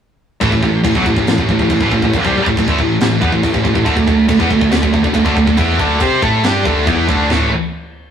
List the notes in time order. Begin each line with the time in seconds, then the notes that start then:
0.41 A1 A2 E3, kick, crash
0.51 A1 A2 E3, kick
0.62 A1 A2 E3, kick
0.84 A1 A2 E3, kick, crash
0.95 B1 B2 F#3, kick
1.06 A1 A2 E3, kick
1.17 A1 A2 E3, kick
1.27 A1 A2 E3, snare, crash
1.38 A1 A2 E3, kick
1.49 A1 A2 E3, kick
1.59 A1 A2 E3, kick
1.70 A1 A2 E3, kick, crash
1.81 A1 A2 E3, kick
1.91 A1 A2 E3, kick
2.02 A1 A2 E3, kick
2.13 muted picked electric bass stroke, muted distorted electric guitar stroke, kick, crash
2.25 C2 C3 G3, kick
2.37 muted distorted electric guitar stroke, muted picked electric bass stroke
2.46 A1 A2 E3, kick
2.57 A1 A2 E3, kick, crash
2.68 D2 D3 A3, kick
2.78 A1 A2 E3, kick
3.00 A1 A2 E3, snare, crash
3.21 E2 E3 B3, kick
3.32 A1 A2 E3, kick
3.43 A1 A2 E3, kick, crash
3.54 A1 A2 E3, kick
3.64 A1 A2 E3, kick
3.74 A1 A2 E3, kick
3.84 D2 D3 A3, kick, crash
3.96 D2 D3 A3, kick
4.07 D2 D3 A3, kick
4.28 D2 D3 A3, kick, crash
4.39 E2 E3 B3, kick
4.50 D2 D3 A3, kick
4.61 D2 D3 A3, kick
4.71 D2 D3 A3, snare, crash
4.82 D2 D3 A3, kick
4.93 D2 D3 A3, kick
5.03 D2 D3 A3, kick
5.14 D2 D3 A3, kick, crash
5.25 D2 D3 A3, kick
5.36 D2 D3 A3, kick
5.46 D2 D3 A3, kick
5.57 E2 E3 B3 E4, kick, crash
5.79 D2 D3 A3 D4, kick
6.00 C3 C4 G4 C5, kick, crash
6.22 A2 A3 E4 A4, kick
6.44 G2 G3 D4 G4, snare, crash
6.65 D2 D3 A3 D4, kick
6.86 E2 E3 B3 E4, kick, crash
7.08 D2 D3 A3 D4, kick
7.30 A1 A2 E3 A3, snare, floor tom